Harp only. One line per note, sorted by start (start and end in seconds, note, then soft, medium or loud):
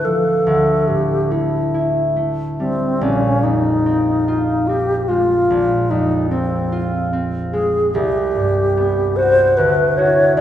0.00 0.45 D2 soft
0.00 0.49 A2 soft
0.00 1.30 A3 soft
0.00 1.73 E4 soft
0.05 0.50 F3 soft
0.47 3.06 D2 medium
0.89 3.06 A2 soft
1.31 2.15 A3 soft
1.74 3.06 E4 soft
2.16 3.05 A3 soft
2.60 3.06 G3 soft
3.01 5.49 A#1 medium
3.44 5.53 F2 soft
3.86 4.68 C4 soft
4.28 6.71 F4 soft
4.69 6.30 C4 soft
5.09 7.52 G#3 soft
5.50 7.98 A#1 medium
5.91 7.98 F2 soft
6.31 7.12 C4 soft
6.72 7.98 F4 soft
7.13 9.61 C4 soft
7.53 7.98 G#3 soft
7.95 9.60 C2 medium
8.36 9.60 G2 soft
8.77 9.61 B3 soft
9.18 9.97 F#4 medium
9.58 10.41 D2 medium
9.98 10.41 E4 soft
9.98 10.41 F#4 soft
10.37 10.41 B1 medium